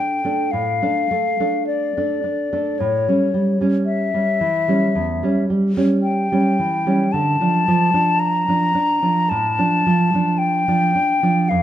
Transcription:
0.00 0.24 D4 soft
0.00 0.53 G5 medium
0.25 0.50 A3 soft
0.25 0.50 D4 soft
0.51 0.81 A2 soft
0.51 1.66 F5 medium
0.82 1.07 A3 soft
0.82 1.08 D4 soft
1.11 1.39 A3 soft
1.40 1.92 A3 soft
1.40 1.92 D4 soft
1.67 2.81 D5 soft
1.97 2.22 A3 soft
1.97 2.22 D4 soft
2.24 2.52 D4 soft
2.53 2.77 A3 soft
2.53 2.77 D4 soft
2.79 3.06 A2 soft
2.79 3.59 C#5 soft
3.08 3.31 G3 soft
3.08 3.31 C#4 soft
3.34 3.59 G3 soft
3.61 4.09 G3 soft
3.61 4.10 C#4 soft
3.86 5.45 E5 medium
4.14 4.38 G3 soft
4.14 4.38 C#4 soft
4.41 4.84 E3 soft
4.68 4.92 G3 soft
4.68 4.93 C#4 soft
4.95 5.21 E2 soft
5.23 5.47 G3 soft
5.23 5.47 C#4 soft
5.50 5.76 G3 soft
5.77 6.27 G3 soft
5.77 6.27 C#4 soft
6.03 7.14 G5 medium
6.32 6.56 G3 soft
6.32 6.56 C#4 soft
6.59 7.02 E3 soft
6.86 7.11 G3 soft
6.86 7.11 C#4 soft
7.12 7.39 D3 soft
7.12 8.21 A5 medium
7.41 7.64 F3 soft
7.41 7.65 D4 soft
7.68 7.92 F3 soft
7.94 8.44 F3 soft
7.94 8.44 D4 soft
8.20 9.31 A#5 medium
8.48 8.73 F3 soft
8.48 8.73 D4 soft
8.75 9.02 D4 soft
9.02 9.27 F3 soft
9.02 9.28 D4 soft
9.29 9.57 A2 soft
9.29 10.40 A5 medium
9.58 9.83 F3 soft
9.58 9.83 D4 soft
9.86 10.13 F3 soft
10.14 10.64 F3 soft
10.14 10.64 D4 soft
10.38 11.51 G5 medium
10.68 10.92 F3 soft
10.68 10.92 D4 soft
10.95 11.22 D4 soft
11.23 11.47 F3 soft
11.23 11.48 D4 soft
11.49 11.63 F2 soft
11.49 11.63 F5 medium

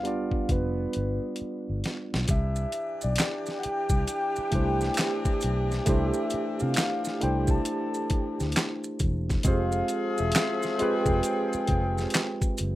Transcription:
0.00 0.30 G1 medium
0.00 0.03 G3 medium
0.00 0.39 G3 medium
0.00 0.04 B3 medium
0.00 0.05 D4 medium
0.00 0.06 F4 medium
0.00 2.30 B4 medium
0.00 0.50 F5 medium
0.04 0.39 B3 medium
0.04 0.40 D4 medium
0.04 0.40 F4 medium
0.04 0.41 D5 medium
0.04 closed hi-hat medium
0.31 kick medium
0.49 0.86 F1 medium
0.49 1.81 B4 medium
0.49 kick medium
0.49 closed hi-hat medium
0.93 1.18 G1 medium
0.93 closed hi-hat medium
1.36 closed hi-hat medium
1.41 muted fingered electric bass stroke soft
1.70 1.82 G1 medium
1.84 snare medium
1.84 closed hi-hat medium
2.14 2.27 B1 medium
2.14 snare medium
2.28 2.65 C2 loud
2.28 8.96 E3 medium
2.28 8.96 D4 medium
2.28 8.96 G4 medium
2.28 3.05 E5 medium
2.28 kick loud
2.28 closed hi-hat medium
2.28 maracas medium
2.56 maracas soft
2.72 closed hi-hat medium
2.72 maracas soft
3.01 3.16 B1 medium
3.01 3.61 D5 medium
3.01 maracas medium
3.16 finger snap medium
3.16 clap medium
3.16 closed hi-hat loud
3.16 maracas medium
3.20 snare loud
3.46 snare soft
3.46 maracas soft
3.59 3.65 F#5 medium
3.63 4.08 G5 loud
3.63 muted fingered electric bass stroke soft
3.63 closed hi-hat medium
3.89 4.04 C2 medium
3.89 kick medium
3.89 maracas medium
4.08 5.39 G5 loud
4.08 closed hi-hat medium
4.08 maracas medium
4.36 muted fingered electric bass stroke soft
4.36 maracas soft
4.51 4.89 C2 medium
4.51 4.87 A3 medium
4.51 4.87 D4 medium
4.51 4.88 E4 medium
4.51 4.88 G4 medium
4.51 kick medium
4.51 closed hi-hat medium
4.55 4.89 C5 medium
4.81 snare soft
4.81 maracas soft
4.94 finger snap medium
4.94 closed hi-hat medium
4.94 maracas medium
4.99 snare loud
4.99 clap medium
5.25 kick medium
5.25 maracas soft
5.41 5.79 B1 medium
5.41 closed hi-hat medium
5.41 maracas soft
5.71 snare soft
5.71 maracas soft
5.85 6.10 C2 loud
5.85 6.21 A3 medium
5.85 6.21 D4 medium
5.85 6.22 E4 medium
5.85 6.22 G4 medium
5.85 6.63 E5 loud
5.85 kick loud
5.85 closed hi-hat medium
5.85 maracas medium
5.89 6.23 C5 medium
6.14 maracas soft
6.30 muted fingered electric bass stroke soft
6.30 closed hi-hat medium
6.30 maracas soft
6.60 6.74 C3 medium
6.60 7.24 F5 loud
6.60 maracas soft
6.74 finger snap medium
6.74 clap medium
6.74 closed hi-hat medium
6.74 maracas medium
6.78 snare loud
7.05 snare soft
7.05 maracas soft
7.20 7.58 C2 medium
7.20 7.55 A3 medium
7.20 7.56 D4 medium
7.20 7.56 E4 medium
7.20 7.57 G4 medium
7.20 7.57 C5 medium
7.20 7.52 G5 medium
7.20 closed hi-hat medium
7.47 8.39 A5 loud
7.47 kick medium
7.47 maracas medium
7.65 closed hi-hat medium
7.65 maracas medium
7.94 maracas soft
8.10 muted fingered electric bass stroke soft
8.10 kick medium
8.10 closed hi-hat medium
8.40 8.53 D2 medium
8.40 snare soft
8.40 maracas soft
8.52 finger snap medium
8.52 closed hi-hat medium
8.52 maracas medium
8.57 snare loud
8.57 clap medium
8.84 maracas soft
8.99 9.36 E1 medium
8.99 kick medium
8.99 closed hi-hat medium
8.99 maracas soft
9.29 kick medium
9.29 snare soft
9.29 maracas soft
9.43 9.81 F1 loud
9.43 12.54 F3 medium
9.43 10.12 G#3 medium
9.43 10.12 C4 medium
9.43 12.54 C4 medium
9.43 10.13 F4 medium
9.43 10.13 G4 medium
9.43 12.54 G#4 medium
9.43 10.21 F5 loud
9.43 kick loud
9.43 closed hi-hat medium
9.43 maracas medium
9.48 10.14 C5 medium
9.72 maracas soft
9.88 closed hi-hat medium
9.88 maracas soft
10.18 10.32 E1 medium
10.18 10.83 E5 loud
10.18 maracas medium
10.32 finger snap medium
10.32 clap medium
10.32 closed hi-hat medium
10.32 maracas medium
10.36 snare loud
10.63 snare soft
10.63 maracas soft
10.78 11.14 G#3 medium
10.78 11.14 C4 medium
10.78 11.15 F4 medium
10.78 11.15 G4 medium
10.78 11.25 G5 loud
10.78 muted fingered electric bass stroke soft
10.78 closed hi-hat medium
10.82 11.16 B4 medium
11.06 11.20 F1 medium
11.06 kick medium
11.06 maracas medium
11.23 12.55 G5 loud
11.23 closed hi-hat medium
11.23 maracas medium
11.53 muted fingered electric bass stroke soft
11.53 maracas soft
11.67 12.05 F1 medium
11.67 kick medium
11.67 closed hi-hat medium
11.98 snare soft
11.98 maracas soft
12.10 finger snap medium
12.10 closed hi-hat medium
12.10 maracas medium
12.15 snare loud
12.15 clap medium
12.42 kick medium
12.42 maracas soft
12.58 12.75 F#1 medium
12.58 closed hi-hat medium
12.58 maracas medium

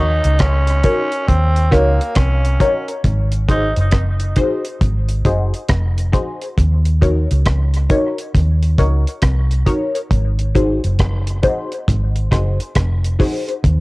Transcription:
0.00 0.20 D#2 loud
0.00 0.23 D#4 medium
0.00 0.41 D#4 loud
0.00 0.23 F#4 medium
0.00 0.23 A#4 medium
0.00 0.23 C#5 loud
0.24 0.81 C#2 loud
0.24 closed hi-hat medium
0.39 1.29 C#4 loud
0.39 kick medium
0.39 cross-stick medium
0.39 closed hi-hat medium
0.67 closed hi-hat medium
0.83 1.11 D#4 medium
0.83 1.11 F#4 medium
0.83 1.11 A#4 medium
0.83 1.11 C#5 loud
0.83 kick medium
0.83 closed hi-hat medium
1.12 closed hi-hat soft
1.28 1.69 D#2 medium
1.28 1.73 C4 loud
1.28 kick loud
1.28 closed hi-hat medium
1.56 closed hi-hat soft
1.71 1.98 C#2 medium
1.71 2.17 A#3 medium
1.71 1.99 D#4 medium
1.71 1.99 F#4 medium
1.71 1.99 A#4 medium
1.71 1.99 C#5 loud
1.71 kick medium
1.71 cross-stick medium
1.71 closed hi-hat medium
2.01 closed hi-hat medium
2.15 2.57 C2 loud
2.15 2.88 C#4 medium
2.15 kick loud
2.15 cross-stick loud
2.15 closed hi-hat medium
2.45 closed hi-hat medium
2.60 2.87 D#4 medium
2.60 2.87 F#4 medium
2.60 2.87 A#4 medium
2.60 2.87 C#5 loud
2.60 kick loud
2.60 closed hi-hat medium
2.88 2.95 A#4 soft
2.88 2.95 C#5 soft
2.88 closed hi-hat soft
3.04 3.73 G#1 loud
3.04 kick medium
3.04 closed hi-hat medium
3.32 closed hi-hat medium
3.48 3.76 D#4 medium
3.48 3.76 D#4 loud
3.48 3.76 F#4 medium
3.48 3.76 G#4 medium
3.48 3.76 C5 medium
3.48 kick medium
3.48 closed hi-hat medium
3.77 4.33 F#1 medium
3.77 closed hi-hat medium
3.92 kick loud
3.92 cross-stick medium
3.92 closed hi-hat medium
4.20 closed hi-hat medium
4.36 4.64 D#4 medium
4.36 4.64 F#4 medium
4.36 4.64 G#4 medium
4.36 4.64 C5 loud
4.36 kick medium
4.36 closed hi-hat medium
4.65 closed hi-hat soft
4.81 5.21 G#1 medium
4.81 kick loud
4.81 closed hi-hat medium
5.09 closed hi-hat soft
5.25 5.51 F#1 medium
5.25 5.52 D#4 medium
5.25 5.52 F#4 medium
5.25 5.53 G#4 medium
5.25 5.53 C5 loud
5.25 kick medium
5.25 closed hi-hat medium
5.54 closed hi-hat soft
5.69 6.10 F1 medium
5.69 kick loud
5.69 cross-stick loud
5.69 closed hi-hat loud
5.98 closed hi-hat medium
6.12 6.40 D#4 medium
6.12 6.40 F#4 medium
6.12 6.40 G#4 medium
6.12 6.41 C5 loud
6.12 kick loud
6.12 closed hi-hat medium
6.41 6.48 G#4 soft
6.41 6.48 C5 soft
6.41 closed hi-hat soft
6.58 7.26 D#2 loud
6.58 kick loud
6.58 closed hi-hat medium
6.85 closed hi-hat medium
7.01 7.29 D#4 medium
7.01 7.29 F#4 medium
7.01 7.29 A#4 medium
7.01 7.29 C#5 loud
7.01 kick medium
7.01 closed hi-hat medium
7.31 7.87 C#2 medium
7.31 closed hi-hat medium
7.46 kick loud
7.46 cross-stick medium
7.46 closed hi-hat medium
7.74 closed hi-hat medium
7.89 8.17 D#4 medium
7.89 8.17 F#4 medium
7.89 8.17 A#4 medium
7.89 8.18 C#5 loud
7.89 kick medium
7.89 closed hi-hat medium
8.18 closed hi-hat medium
8.35 8.75 D#2 medium
8.35 kick loud
8.35 closed hi-hat medium
8.63 closed hi-hat soft
8.78 9.04 C#2 medium
8.78 9.05 D#4 medium
8.78 9.05 F#4 medium
8.78 9.06 A#4 medium
8.78 9.06 C#5 loud
8.78 kick loud
8.78 closed hi-hat medium
9.07 closed hi-hat soft
9.22 9.63 C2 loud
9.22 kick loud
9.22 cross-stick loud
9.22 closed hi-hat medium
9.51 closed hi-hat medium
9.66 9.93 D#4 medium
9.66 9.94 F#4 medium
9.66 9.94 A#4 medium
9.66 9.94 C#5 loud
9.66 kick medium
9.66 closed hi-hat medium
9.95 10.01 A#4 soft
9.95 10.01 C#5 soft
9.95 closed hi-hat soft
10.11 10.79 G#1 loud
10.11 kick medium
10.11 closed hi-hat medium
10.39 closed hi-hat soft
10.55 10.82 D#4 medium
10.55 10.82 F#4 medium
10.55 10.82 G#4 medium
10.55 10.82 C5 loud
10.55 kick medium
10.55 closed hi-hat medium
10.84 11.40 F#1 medium
10.84 closed hi-hat medium
10.99 kick loud
10.99 cross-stick medium
10.99 closed hi-hat medium
11.27 closed hi-hat medium
11.43 11.70 D#4 medium
11.43 11.70 F#4 medium
11.43 11.70 G#4 medium
11.43 11.70 C5 loud
11.43 kick medium
11.43 closed hi-hat medium
11.72 closed hi-hat soft
11.88 12.28 G#1 medium
11.88 kick loud
11.88 closed hi-hat medium
12.16 closed hi-hat soft
12.31 12.57 F#1 medium
12.31 12.58 D#4 loud
12.31 12.58 F#4 medium
12.31 12.59 G#4 medium
12.31 12.59 C5 loud
12.31 kick medium
12.31 cross-stick medium
12.31 closed hi-hat medium
12.60 closed hi-hat soft
12.75 13.16 F1 medium
12.75 kick loud
12.75 cross-stick loud
12.75 closed hi-hat medium
13.04 closed hi-hat medium
13.19 13.46 D#4 medium
13.19 13.47 F#4 medium
13.19 13.47 G#4 medium
13.19 13.47 C5 loud
13.19 kick loud
13.19 open hi-hat medium
13.48 13.54 G#4 soft
13.48 13.54 C5 soft
13.48 closed hi-hat soft
13.64 13.80 D#2 loud
13.64 kick medium
13.64 closed hi-hat medium

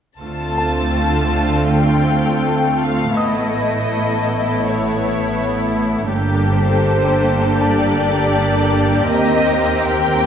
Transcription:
0.20 3.13 D2 soft
0.20 3.13 D3 soft
0.20 6.09 A3 soft
0.20 3.13 C4 soft
0.20 3.13 F4 soft
0.20 6.10 A4 soft
0.20 1.64 A5 soft
0.58 2.76 A4 soft
0.58 2.76 A5 soft
1.70 2.81 G5 soft
2.82 3.18 F5 soft
3.17 6.13 A1 soft
3.17 6.13 A2 soft
3.17 6.10 B3 soft
3.17 6.09 E4 soft
3.17 4.66 D#5 soft
3.17 5.35 D#6 soft
4.65 6.13 C#5 soft
6.12 9.06 G1 soft
6.12 9.05 G2 soft
6.12 10.26 A#3 soft
6.12 9.06 D4 soft
6.12 10.26 G4 soft
6.12 9.05 A4 soft
6.50 7.57 C5 soft
7.61 9.10 D5 soft
7.61 9.80 A5 soft
9.09 10.26 D#2 soft
9.09 10.26 C4 soft
9.09 10.26 A#4 soft
9.09 9.84 D#5 medium
9.85 10.26 G5 medium

